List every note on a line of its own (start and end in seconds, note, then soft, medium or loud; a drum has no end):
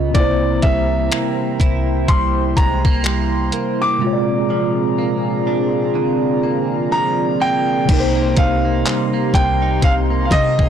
0.00 0.13 C#2 loud
0.00 0.14 C#3 medium
0.00 0.15 B3 medium
0.00 0.26 B3 medium
0.00 0.15 F4 medium
0.00 0.19 D#5 medium
0.11 0.61 C2 loud
0.11 3.96 C3 medium
0.11 4.02 C3 medium
0.11 3.97 A#3 medium
0.11 3.98 E4 medium
0.11 3.98 C5 medium
0.11 0.64 D5 medium
0.11 3.98 G5 medium
0.11 2.06 A#5 medium
0.11 kick loud
0.11 closed hi-hat medium
0.17 3.99 E4 medium
0.17 4.00 C5 medium
0.62 1.10 C2 loud
0.62 2.07 G3 medium
0.62 2.12 E5 medium
0.62 kick medium
0.62 closed hi-hat medium
1.12 2.56 A#3 medium
1.12 finger snap loud
1.12 closed hi-hat medium
1.60 2.06 C2 loud
1.60 4.13 E4 medium
1.60 kick medium
1.60 closed hi-hat medium
2.07 2.55 C2 loud
2.07 3.04 G3 medium
2.07 3.99 C6 medium
2.07 2.53 C6 medium
2.07 kick medium
2.07 closed hi-hat medium
2.57 2.84 C2 loud
2.57 2.85 G#3 medium
2.57 3.85 A#5 loud
2.57 kick medium
2.57 closed hi-hat medium
2.85 3.51 C2 loud
2.85 3.52 A#3 medium
2.85 kick medium
3.04 4.13 G3 medium
3.04 finger snap loud
3.04 closed hi-hat medium
3.52 4.98 A#3 medium
3.52 closed hi-hat medium
3.82 7.37 D6 loud
3.98 7.89 A#2 medium
3.98 7.83 C3 medium
3.98 7.85 G#3 medium
3.98 7.84 C4 medium
3.98 7.85 F4 medium
3.98 7.84 G#4 medium
3.98 7.85 D5 medium
3.98 7.84 A#5 medium
4.04 7.86 F4 medium
4.04 4.12 C#5 medium
4.13 7.91 D5 medium
4.50 6.91 F3 medium
4.98 6.43 A#3 medium
5.47 8.00 D4 medium
5.95 7.88 D3 medium
6.43 7.40 A#3 medium
6.92 8.00 F3 medium
6.92 7.37 A#5 loud
7.40 8.16 A#3 medium
7.40 8.41 G5 loud
7.85 8.35 C2 loud
7.85 10.69 C3 medium
7.85 9.81 C3 medium
7.85 10.69 A#3 medium
7.85 10.69 D#4 medium
7.85 10.69 G4 medium
7.85 10.69 A#5 medium
7.85 10.69 C6 medium
7.85 kick loud
7.85 closed hi-hat medium
7.85 crash loud
7.91 10.69 D#4 medium
7.91 7.99 A#4 medium
8.00 10.69 C5 medium
8.16 8.65 A#3 medium
8.37 8.84 C2 loud
8.37 9.61 D#4 medium
8.37 9.37 F5 medium
8.37 kick medium
8.37 closed hi-hat medium
8.65 9.13 A#3 medium
8.85 9.33 G3 medium
8.85 clap loud
8.85 closed hi-hat medium
9.13 10.10 A#3 medium
9.34 9.80 C2 loud
9.34 10.69 G3 medium
9.34 9.79 G5 loud
9.34 kick medium
9.34 closed hi-hat medium
9.62 10.30 D#4 medium
9.82 10.29 C2 loud
9.82 10.69 C3 medium
9.82 9.93 F5 loud
9.82 kick loud
9.82 closed hi-hat medium
10.10 10.58 A#3 medium
10.25 10.31 F5 medium
10.30 10.69 C3 loud
10.30 10.69 D#4 medium
10.30 10.69 D#5 loud
10.30 kick medium
10.30 closed hi-hat medium
10.59 10.69 A#3 medium
10.59 kick medium